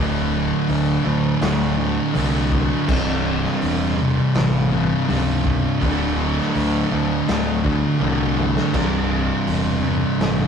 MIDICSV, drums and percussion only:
0, 0, Header, 1, 2, 480
1, 0, Start_track
1, 0, Tempo, 732601
1, 1886, Time_signature, 4, 2, 24, 8
1, 6863, End_track
2, 0, Start_track
2, 0, Title_t, "Drums"
2, 446, Note_on_c, 9, 46, 51
2, 512, Note_off_c, 9, 46, 0
2, 927, Note_on_c, 9, 46, 70
2, 933, Note_on_c, 9, 38, 113
2, 992, Note_off_c, 9, 46, 0
2, 999, Note_off_c, 9, 38, 0
2, 1408, Note_on_c, 9, 46, 66
2, 1473, Note_off_c, 9, 46, 0
2, 1649, Note_on_c, 9, 36, 89
2, 1714, Note_off_c, 9, 36, 0
2, 1890, Note_on_c, 9, 36, 123
2, 1891, Note_on_c, 9, 49, 117
2, 1956, Note_off_c, 9, 36, 0
2, 1957, Note_off_c, 9, 49, 0
2, 2257, Note_on_c, 9, 38, 31
2, 2322, Note_off_c, 9, 38, 0
2, 2370, Note_on_c, 9, 46, 65
2, 2435, Note_off_c, 9, 46, 0
2, 2847, Note_on_c, 9, 46, 68
2, 2854, Note_on_c, 9, 38, 103
2, 2913, Note_off_c, 9, 46, 0
2, 2919, Note_off_c, 9, 38, 0
2, 3332, Note_on_c, 9, 46, 71
2, 3397, Note_off_c, 9, 46, 0
2, 3570, Note_on_c, 9, 36, 89
2, 3636, Note_off_c, 9, 36, 0
2, 3810, Note_on_c, 9, 36, 119
2, 3811, Note_on_c, 9, 46, 62
2, 3875, Note_off_c, 9, 36, 0
2, 3876, Note_off_c, 9, 46, 0
2, 4179, Note_on_c, 9, 38, 34
2, 4245, Note_off_c, 9, 38, 0
2, 4292, Note_on_c, 9, 46, 53
2, 4358, Note_off_c, 9, 46, 0
2, 4769, Note_on_c, 9, 46, 62
2, 4776, Note_on_c, 9, 38, 107
2, 4835, Note_off_c, 9, 46, 0
2, 4841, Note_off_c, 9, 38, 0
2, 5008, Note_on_c, 9, 36, 79
2, 5074, Note_off_c, 9, 36, 0
2, 5247, Note_on_c, 9, 48, 68
2, 5312, Note_off_c, 9, 48, 0
2, 5488, Note_on_c, 9, 45, 90
2, 5553, Note_off_c, 9, 45, 0
2, 5613, Note_on_c, 9, 38, 87
2, 5679, Note_off_c, 9, 38, 0
2, 5725, Note_on_c, 9, 57, 98
2, 5727, Note_on_c, 9, 36, 110
2, 5791, Note_off_c, 9, 57, 0
2, 5792, Note_off_c, 9, 36, 0
2, 6206, Note_on_c, 9, 46, 62
2, 6272, Note_off_c, 9, 46, 0
2, 6683, Note_on_c, 9, 46, 60
2, 6690, Note_on_c, 9, 38, 111
2, 6749, Note_off_c, 9, 46, 0
2, 6756, Note_off_c, 9, 38, 0
2, 6863, End_track
0, 0, End_of_file